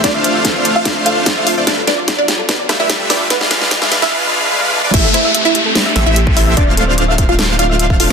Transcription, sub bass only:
0.04 D1
1.57 D2
1.67 G1
2.69 G1
2.80 G1
3.31 E1
4.94 A1
5.96 A1
6.06 A1
6.57 D1

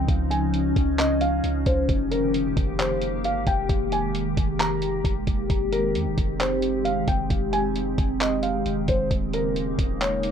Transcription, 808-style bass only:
0.08 C#2
0.76 C#2
1.44 C#2
1.66 C#2
1.89 F1
2.57 F1
3.24 G1
3.47 F1
3.69 F1
4.37 F1
5.05 F1
5.27 F1
5.50 F1
5.95 F2
6.06 F1
6.18 F1
7.08 F1
7.30 F1
7.98 F1
8.66 F1
8.88 F1
9.11 D#1
9.79 D#1

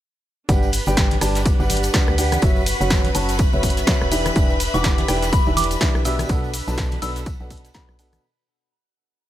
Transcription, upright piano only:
0.49 G3 D4 G4 B4 F#5
0.87 G3 D4 G4 B4 G5
1.21 G3 D4 G4 B4 A5
1.60 G3 D4 G4 B4 F#5
1.94 G3 D4 G4 B4 F#5
2.18 D4 G4 B4 F#5
2.42 F#3 C#4 F#4 B4 E5
2.81 F#3 C#4 F#4 B4 F#5
3.15 F#3 C#4 F#4 B4 A5
3.53 F#3 C#4 F#4 B4 E5
3.87 C#4 F#4 B4 E5
4.12 E3 D4 G4 B4 E5
4.36 E3 D4 G4 B4 E5
4.74 E3 D4 G4 B4 F#5
5.08 E3 D4 G4 B4 G5
5.47 E3 D4 G4 B4 E5
5.81 E3 D4 G4 B4 E5
6.05 B2 D4 G4 B4 E5
6.29 B2 D4 A4 B4 F#5
6.68 B2 D4 A4 B4 A5
7.02 B2 D4 A4 B4 B5
7.40 B2 D4 A4 B4 F#5
7.75 B2 D4 A4 B4 F#5
7.99 B2 D4 A4 B4 F#5

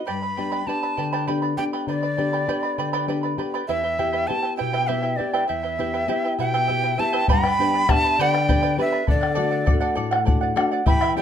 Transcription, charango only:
0.07 G4 B4 D5 G5 B5
0.23 B4 D5 B5
0.37 B4 D5 G5 B5
0.52 G4 B4 D5 G5 B5
0.68 B4 D5 G5 B5
0.83 B4 D5 B5
0.97 B4 D5 G5 B5
1.13 G4 B4 D5 G5 B5
1.27 G4 B4 D5 G5 B5
1.42 B4 D5 B5
1.57 B4 D5 G5 B5
1.73 G4 B4 D5 G5 B5
1.88 B4 D5 G5 B5
2.03 B4 D5 B5
2.18 B4 D5 G5 B5
2.33 G4 B4 D5 G5 B5
2.48 G4 B4 D5 G5 B5
2.63 B4 D5 B5
2.78 B4 D5 G5 B5
2.93 G4 B4 D5 G5 B5
3.08 B4 D5 G5 B5
3.23 B4 D5 B5
3.38 B4 D5 G5 B5
3.54 G4 B4 D5 G5 B5
3.69 E4 G4 B4 E5 G5
3.84 E4 B4 G5
3.98 E4 B4 E5 G5
4.13 E4 G4 B4 E5 G5
4.28 E4 B4 E5 G5
4.43 E4 B4 G5
4.57 E4 B4 E5 G5
4.73 E4 G4 B4 E5 G5
4.88 E4 G4 B4 E5 G5
5.03 E4 B4 G5
5.18 E4 B4 E5 G5
5.33 E4 G4 B4 E5 G5
5.48 E4 B4 E5 G5
5.63 E4 B4 G5
5.78 E4 B4 E5 G5
5.94 E4 G4 B4 E5 G5
6.08 E4 G4 B4 E5 G5
6.24 E4 B4 G5
6.38 E4 B4 E5 G5
6.54 E4 G4 B4 E5 G5
6.68 E4 B4 E5 G5
6.84 E4 B4 G5
6.98 E4 B4 E5 G5
7.13 E4 G4 B4 E5 G5
7.29 G4 B4 D5 G5 B5
7.44 G4 B4 D5 G5 B5
7.60 B4 D5 G5 B5
7.74 B4 D5 B5
7.89 B4 D5 G5 B5
8.04 B4 D5 B5
8.19 G4 B4 D5 G5 B5
8.34 B4 D5 B5
8.49 G4 B4 D5 G5 B5
8.63 G4 B4 D5 G5 B5
8.78 B4 D5 G5 B5
8.92 B4 D5 B5
9.07 A4 D5 F#5
9.21 D5 F#5
9.35 A4 D5 F#5
9.51 D5 F#5
9.66 A4 D5 F#5
9.81 A4 D5 F#5
9.95 A4 D5 F#5
10.11 D5 F#5
10.25 A4 D5 F#5
10.41 D5 F#5
10.56 A4 D5 F#5
10.71 D5 F#5
10.86 E4 G4 E5 G5 B5
11.02 E4 G4 E5 G5 B5
11.17 E4 E5 G5 B5

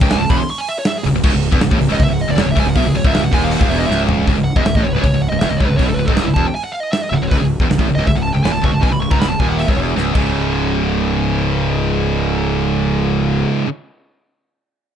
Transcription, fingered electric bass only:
0.01 C#1
0.20 C#1
0.30 E1
1.06 C#1
1.13 C#1
1.24 C#1
1.35 C#1
1.53 E1
1.63 C#1
1.71 A1
1.82 C#1
1.92 C#1
2.00 C#1
2.10 C#1
2.30 C#1
2.37 E1
2.47 C#1
2.56 C#1
2.65 C#1
2.76 B1
2.84 C#1
2.94 C#1
3.04 C#1
3.23 C#1
3.32 D#1
3.61 C#1
3.69 E1
3.89 C#1
4.27 C#1
4.36 C#1
4.56 E1
4.65 C#1
4.75 A1
4.84 C#1
4.93 C#1
5.03 C#1
5.13 C#1
5.31 C#1
5.42 E1
5.51 C#1
5.61 C#1
5.69 C#1
5.79 B1
5.87 C#1
5.97 C#1
6.08 C#1
6.26 C#1
6.36 E1
7.12 C#1
7.22 C#1
7.32 C#1
7.41 C#1
7.60 E1
7.70 C#1
7.79 A1
7.88 C#1
7.97 C#1
8.07 C#1
8.17 C#1
8.34 C#1
8.45 E1
8.55 C#1
8.63 C#1
8.74 C#1
8.83 B1
8.91 C#1
9.01 C#1
9.11 C#1
9.29 C#1
9.40 D#1
9.68 C#1
9.77 E1
9.97 C#1
10.15 C#1

